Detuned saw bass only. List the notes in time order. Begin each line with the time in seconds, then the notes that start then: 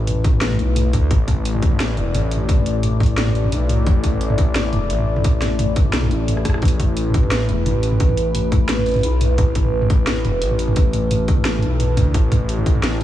Already playing: A1
0.59 B1
0.93 D2
1.11 A1
1.97 E1
2.14 A1
3.52 B1
3.87 A1
4.73 E1
4.90 A1
5.94 B1
6.11 A1
6.63 A1
7.48 E1
7.66 A1
9.04 B1
9.38 A1
10.25 E1
10.42 A1
11.63 B1
11.97 D2
12.14 A1
13.00 E1